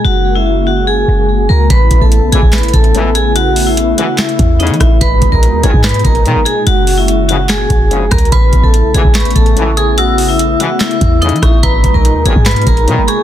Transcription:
Already playing: G#3
0.05 F#1 C#3 A#3 F#4 F#5
0.36 E4 E5
0.67 F#4 F#5
0.87 G#4 G#5
1.08 F#1
1.49 C#2 A#4 A#5
1.70 A1 C#3 A3 B3 E4 B4 B5, kick, closed hi-hat
1.91 A1, kick, closed hi-hat
2.01 A1 A4 A5, kick
2.12 closed hi-hat
2.22 B1
2.32 A1 C#2 B2 E3 G#4 G#5, closed hi-hat
2.43 A1, kick
2.53 B4 B5, snare, clap, closed hi-hat
2.58 closed hi-hat
2.63 closed hi-hat
2.68 closed hi-hat
2.73 A1 A4 A5, kick, closed hi-hat
2.84 closed hi-hat
2.94 C#2 B2 E3, closed hi-hat
3.15 G#4 G#5, closed hi-hat
3.36 F#4 F#5, closed hi-hat
3.56 open hi-hat
3.67 E4 E5
3.77 closed hi-hat
3.98 C#2 B2 E3 F#4 F#5, closed hi-hat
4.18 E4 E5, snare, clap, closed hi-hat
4.29 closed hi-hat
4.39 E2, kick, closed hi-hat
4.60 A1 E2 C#3 D#4 D#5, closed hi-hat
4.67 E3, closed hi-hat
4.74 closed hi-hat
4.80 A1 E4 E5, kick, cross-stick, closed hi-hat
5.01 G#1 A#2 B2 G#3 D#4 B4 B5, kick, closed hi-hat
5.22 G#1, kick, closed hi-hat
5.32 B1 A#4 A#5, kick
5.43 closed hi-hat
5.53 D#2
5.63 G#1 B1 A#2 D#3 G#4 G#5, closed hi-hat
5.74 G#2, kick
5.84 B4 B5, snare, clap, closed hi-hat
5.89 closed hi-hat
5.94 closed hi-hat
5.99 closed hi-hat
6.04 G#1 A#4 A#5, kick, closed hi-hat
6.15 closed hi-hat
6.25 B1 A#2 B2 D#3, closed hi-hat
6.36 G#1
6.45 G#4 G#5, closed hi-hat
6.67 F#1 C#3 F#4 F#5, closed hi-hat
6.87 open hi-hat
6.98 E4 E5
7.08 closed hi-hat
7.29 A#1 G#2 C#3 F#4 F#5, closed hi-hat
7.49 G#4 G#5, snare, clap, closed hi-hat
7.70 F#1, kick, closed hi-hat
7.91 A#1 G#2 C#3, closed hi-hat
8.11 C#2 A#4 A#5, kick, cross-stick, closed hi-hat
8.18 closed hi-hat
8.25 closed hi-hat
8.32 A1 C#3 A3 B3 E4 B4 B5, kick, closed hi-hat
8.53 A1, kick, closed hi-hat
8.63 A1 A4 A5, kick
8.74 closed hi-hat
8.84 B1
8.94 A1 C#2 B2 E3 G#4 G#5, closed hi-hat
9.05 A1, kick
9.15 B4 B5 C#6, snare, clap, closed hi-hat
9.20 closed hi-hat
9.25 closed hi-hat
9.31 closed hi-hat
9.36 A1 A4 A5, kick, closed hi-hat
9.46 closed hi-hat
9.56 C#2 B2 E3, closed hi-hat
9.77 G#4 G#5 D#6, closed hi-hat
9.98 F#4 F#5 E6, closed hi-hat
10.18 open hi-hat
10.29 E4 E5
10.39 closed hi-hat
10.60 C#2 B2 E3 F#4 F#5, closed hi-hat
10.80 E4 E5 E6, snare, clap, closed hi-hat
10.91 closed hi-hat
11.01 E2, kick, closed hi-hat
11.22 A1 E2 C#3 D#4 D#5 D#6, closed hi-hat
11.29 E3, closed hi-hat
11.36 closed hi-hat
11.42 A1 E4 E5 C#6, kick, cross-stick, closed hi-hat
11.63 G#1 A#2 B2 G#3 D#4 B4 A#5 B5, kick, closed hi-hat
11.84 G#1, kick, closed hi-hat
11.94 B1 A#4 A#5, kick
12.05 closed hi-hat
12.15 D#2
12.25 G#1 B1 A#2 D#3 G#4 G#5, closed hi-hat
12.36 G#2, kick
12.46 B4 B5, snare, clap, closed hi-hat
12.51 closed hi-hat
12.56 closed hi-hat
12.62 closed hi-hat
12.67 G#1 A#4 A#5, kick, closed hi-hat
12.77 closed hi-hat
12.87 B1 A#2 B2 D#3, closed hi-hat
12.98 G#1
13.08 G#4 G#5 C#6, closed hi-hat

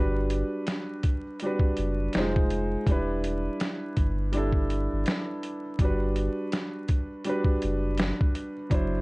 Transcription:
Already playing: G1 G3 D4 F#4
0.00 B4
0.30 closed hi-hat
0.67 finger snap, snare, closed hi-hat
1.03 kick, closed hi-hat
1.40 G3 D4, closed hi-hat
1.45 F#4 B4
1.59 kick
1.77 F#1, closed hi-hat
2.13 F1 G3 D#4 F4, finger snap, snare, closed hi-hat
2.18 G#3 C5
2.36 kick
2.50 closed hi-hat
2.87 E1 G3 D4, kick, closed hi-hat
2.91 E4 B4
3.24 closed hi-hat
3.60 finger snap, snare, closed hi-hat
3.97 G1, kick, closed hi-hat
4.32 G3 D4 E4, closed hi-hat
4.37 A4
4.52 kick
4.70 closed hi-hat
4.93 G1
5.06 finger snap, snare, closed hi-hat
5.43 closed hi-hat
5.79 G1 G3 D4, kick, closed hi-hat
5.83 F#4 B4
6.16 closed hi-hat
6.52 finger snap, snare, closed hi-hat
6.88 kick, closed hi-hat
7.25 G3 D4 F#4, closed hi-hat
7.29 B4
7.45 kick
7.62 F#1, closed hi-hat
7.97 finger snap, snare, closed hi-hat
8.21 kick
8.35 closed hi-hat
8.70 F#1 F#3 D4 E4, kick, closed hi-hat
8.74 C5

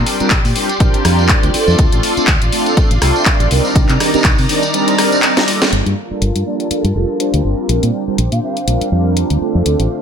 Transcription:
Already playing: G3 C4 D4 F4 G4 A#4 D5 C6
0.06 open hi-hat
0.20 G3 C4 D4 F4 A#4, muted fingered electric bass stroke, closed hi-hat, tambourine
0.30 A#1, kick, clap, closed hi-hat
0.44 A#2, open hi-hat, tambourine
0.55 G3 C4 D4 F4 A#4, open hi-hat
0.69 closed hi-hat, tambourine
0.80 A#1 G3 C4 D4 F4 A#4, kick, closed hi-hat, tambourine
0.94 muted fingered electric bass stroke, closed hi-hat, tambourine
1.05 F2 G3 C4 D4 F4 A#4, cross-stick, open hi-hat
1.19 tambourine
1.29 kick, clap, closed hi-hat
1.43 D2, closed hi-hat, tambourine
1.53 A3 C4 D4 F4 A4, open hi-hat
1.67 F2, tambourine
1.79 D2, kick, closed hi-hat
1.92 A1, closed hi-hat, tambourine
2.03 open hi-hat
2.16 A3 C4 D4 F4 A4, muted fingered electric bass stroke, closed hi-hat, tambourine
2.27 D2, kick, clap, closed hi-hat
2.41 A1, closed hi-hat, tambourine
2.52 A3 C4 D4 F4 A4, open hi-hat
2.66 closed hi-hat, tambourine
2.76 C4 D4, muted fingered electric bass stroke, kick, closed hi-hat, tambourine
2.91 A1, closed hi-hat, tambourine
3.01 C2 A3 C4 D4 F4 A4, cross-stick, open hi-hat
3.16 tambourine
3.26 kick, clap, closed hi-hat, tambourine
3.40 A1, closed hi-hat, tambourine
3.50 C2 D#3 G3 C4 D4 D#4 A#4 D5 A#5, open hi-hat
3.65 tambourine
3.75 C2, kick, closed hi-hat, tambourine
3.88 C3, clap, closed hi-hat, tambourine
4.00 cross-stick, open hi-hat
4.13 G3 C4 D4 D#4 A#4, muted fingered electric bass stroke, closed hi-hat, tambourine
4.24 C2, kick, clap, closed hi-hat
4.38 C3, open hi-hat, tambourine
4.49 G3 C4 D4 D#4 A#4, open hi-hat
4.62 closed hi-hat, tambourine
4.73 G3 C4 D4 D#4 A#4, closed hi-hat, tambourine
4.88 closed hi-hat, tambourine
4.98 G3 C4 D4 D#4 A#4, cross-stick, open hi-hat
5.12 closed hi-hat, tambourine
5.22 clap, closed hi-hat, tambourine
5.37 snare, closed hi-hat, tambourine
5.47 G3 A#3 D4 F4 A4, open hi-hat
5.62 snare, closed hi-hat, tambourine
5.72 G1 F4 A#4 A5, closed hi-hat
5.86 G2, closed hi-hat
6.10 G3 A#3 D4 F4 A4, muted fingered electric bass stroke
6.21 G1, closed hi-hat
6.35 G2, closed hi-hat
6.45 G3 A#3 D4 F4 A4 D5
6.60 D5, closed hi-hat
6.70 G3 A#3 D4 F4 A4, muted fingered electric bass stroke, closed hi-hat
6.84 G2, closed hi-hat
6.95 F1 G3 A#3 D4 F4 A4
7.19 G3 A#3 D4 F4 C5, closed hi-hat
7.33 D2, closed hi-hat
7.44 G1 G3 C4 D4 F4 A#4
7.69 A#1 D4 C5 G5, closed hi-hat
7.83 A#2, closed hi-hat
8.07 G3 C4 D4 F4 A#4, muted fingered electric bass stroke
8.18 A#1, closed hi-hat
8.32 A#2 F5, closed hi-hat
8.42 G3 C4 D4 F4 A#4 F5
8.57 closed hi-hat
8.67 A#1 G3 C4 D4 F4 A#4, closed hi-hat
8.81 muted fingered electric bass stroke, closed hi-hat
8.91 F2 G3 C4 D4 F4 A#4
9.17 closed hi-hat
9.30 D2, closed hi-hat
9.40 A3 C4 D4 F4 A4 C5 F5, muted fingered electric bass stroke
9.55 F2
9.66 D2, closed hi-hat
9.79 A1, closed hi-hat

